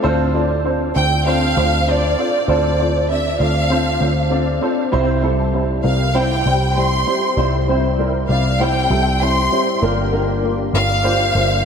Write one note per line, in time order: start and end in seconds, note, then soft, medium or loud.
0.02 0.92 D2 loud
0.02 0.91 A2 medium
0.02 0.26 C4 loud
0.02 0.26 D4 loud
0.02 0.27 F4 loud
0.02 0.27 A4 loud
0.02 0.27 C5 loud
0.34 0.57 C4 medium
0.34 0.57 D4 medium
0.34 0.57 F4 medium
0.34 0.57 A4 medium
0.34 0.57 D5 medium
0.64 0.87 C4 medium
0.64 0.87 D4 medium
0.64 0.88 F4 medium
0.64 0.88 A4 medium
0.64 0.88 C5 medium
0.95 1.53 D2 loud
0.95 1.18 C4 medium
0.95 1.18 D4 medium
0.95 1.18 F4 medium
0.95 1.18 A4 medium
0.95 1.19 C5 medium
0.95 1.25 G5 loud
1.26 1.49 C4 loud
1.26 1.49 D4 medium
1.26 1.49 F4 medium
1.26 1.49 A4 medium
1.26 1.49 C5 loud
1.26 1.89 F5 loud
1.56 2.14 D2 loud
1.56 1.79 C4 medium
1.56 1.80 D4 medium
1.56 1.80 F4 medium
1.56 1.80 A4 medium
1.56 1.80 C5 medium
1.87 2.10 C4 medium
1.87 2.10 D4 medium
1.87 2.10 F4 medium
1.87 2.10 A4 medium
1.87 2.11 C5 medium
1.87 2.50 D5 loud
2.18 2.41 C4 medium
2.18 2.41 D4 medium
2.18 2.41 F4 medium
2.18 2.41 A4 medium
2.18 2.41 C5 medium
2.48 3.36 D2 loud
2.48 3.36 A2 medium
2.48 2.71 C4 medium
2.48 2.71 D4 medium
2.48 2.71 F4 medium
2.48 2.71 A4 medium
2.48 2.72 C5 loud
2.48 3.07 D5 medium
2.79 3.02 C4 medium
2.79 3.02 D4 medium
2.79 3.02 F4 medium
2.79 3.02 A4 medium
2.79 3.02 C5 medium
3.09 3.32 C4 medium
3.09 3.32 D4 medium
3.09 3.32 F4 medium
3.09 3.33 A4 medium
3.09 3.33 D5 medium
3.09 3.41 E5 medium
3.39 3.97 D2 medium
3.39 3.62 C4 medium
3.39 3.63 D4 medium
3.39 3.63 F4 medium
3.39 3.63 A4 medium
3.39 3.63 D5 medium
3.39 4.29 F5 loud
3.70 3.93 C4 medium
3.70 3.93 D4 medium
3.70 3.94 F4 medium
3.70 3.93 A4 medium
3.70 3.94 C5 loud
4.00 4.58 D2 loud
4.00 4.23 C4 medium
4.00 4.23 D4 medium
4.00 4.24 F4 medium
4.00 4.24 A4 medium
4.00 4.24 C5 medium
4.30 4.54 C4 medium
4.30 4.54 D4 medium
4.30 4.54 F4 medium
4.30 4.54 A4 medium
4.30 4.54 D5 medium
4.61 4.85 C4 medium
4.61 4.85 D4 medium
4.61 4.85 F4 medium
4.61 4.85 A4 medium
4.61 4.85 C5 loud
4.92 5.81 C2 loud
4.92 5.80 G2 medium
4.92 5.15 G3 loud
4.92 5.15 C4 loud
4.92 5.15 E4 loud
4.92 5.15 G4 medium
4.92 5.16 C5 loud
5.22 5.46 G3 medium
5.22 5.46 C4 medium
5.22 5.46 E4 medium
5.22 5.46 G4 medium
5.22 5.46 A4 medium
5.53 5.77 G3 medium
5.53 5.76 C4 medium
5.53 5.77 E4 medium
5.53 5.77 G4 medium
5.53 5.77 C5 medium
5.83 6.42 C2 medium
5.83 6.07 G3 medium
5.83 6.07 C4 medium
5.83 6.07 E4 medium
5.83 6.07 G4 medium
5.83 6.07 A#4 medium
5.83 6.13 F5 medium
6.14 6.37 G3 medium
6.14 6.38 C4 medium
6.14 6.38 E4 medium
6.14 6.38 G4 medium
6.14 6.38 C5 loud
6.14 6.77 G5 loud
6.46 7.03 C2 loud
6.46 6.69 G3 medium
6.46 6.68 C4 medium
6.46 6.69 E4 medium
6.46 6.69 G4 medium
6.46 6.69 C5 medium
6.76 6.99 G3 medium
6.76 6.99 C4 medium
6.76 6.99 E4 medium
6.76 7.00 G4 medium
6.76 7.00 C5 medium
6.76 7.38 C6 medium
7.06 7.29 G3 medium
7.06 7.29 C4 medium
7.06 7.30 E4 medium
7.06 7.30 G4 medium
7.06 7.30 C5 medium
7.37 8.25 C2 loud
7.37 8.25 G2 medium
7.37 7.60 G3 medium
7.37 7.60 C4 medium
7.37 7.60 E4 medium
7.37 7.61 G4 medium
7.37 7.61 C5 loud
7.68 7.91 G3 medium
7.68 7.91 C4 medium
7.68 7.91 E4 medium
7.68 7.91 G4 medium
7.68 7.91 C5 loud
7.98 8.21 G3 medium
7.98 8.21 C4 medium
7.98 8.21 E4 medium
7.98 8.22 G4 medium
7.98 8.22 A#4 medium
8.29 8.86 C2 medium
8.29 8.52 G3 medium
8.29 8.52 C4 medium
8.29 8.52 E4 medium
8.29 8.52 G4 medium
8.29 8.53 D5 medium
8.29 8.58 F5 medium
8.59 8.82 G3 loud
8.59 8.83 C4 medium
8.59 8.83 E4 medium
8.59 8.83 G4 medium
8.59 8.83 C5 loud
8.59 9.21 G5 loud
8.90 9.47 C2 loud
8.90 9.13 G3 medium
8.90 9.13 C4 medium
8.90 9.13 E4 medium
8.90 9.13 G4 medium
8.90 9.13 A4 medium
9.21 9.44 G3 medium
9.21 9.44 C4 medium
9.21 9.44 E4 medium
9.21 9.44 G4 medium
9.21 9.44 C5 medium
9.21 9.82 C6 loud
9.51 9.74 G3 medium
9.51 9.75 C4 medium
9.51 9.75 E4 medium
9.51 9.75 G4 medium
9.51 9.75 C5 medium
9.82 10.70 G1 loud
9.82 10.70 G2 medium
9.82 10.70 D3 medium
9.82 10.05 A#3 loud
9.82 10.05 D4 medium
9.82 10.05 F4 medium
9.82 10.05 G4 loud
9.82 10.05 A#4 loud
10.12 10.35 A#3 medium
10.12 10.35 D4 medium
10.12 10.36 F4 medium
10.12 10.36 G4 medium
10.12 10.36 A#4 loud
10.43 10.66 A#3 medium
10.43 10.66 D4 medium
10.43 10.66 F4 medium
10.43 10.66 G4 medium
10.43 10.66 A#4 medium
10.73 11.31 G1 medium
10.73 10.96 A#3 medium
10.73 10.96 D4 medium
10.73 10.97 F4 medium
10.73 10.97 G4 medium
10.73 10.97 A#4 medium
10.73 11.65 F5 loud
11.03 11.27 A#3 loud
11.03 11.27 D4 medium
11.03 11.27 F4 medium
11.03 11.27 G4 medium
11.03 11.27 C5 loud
11.35 11.65 G1 loud
11.35 11.58 A#3 medium
11.35 11.58 D4 medium
11.35 11.58 F4 medium
11.35 11.58 G4 medium
11.35 11.58 C5 medium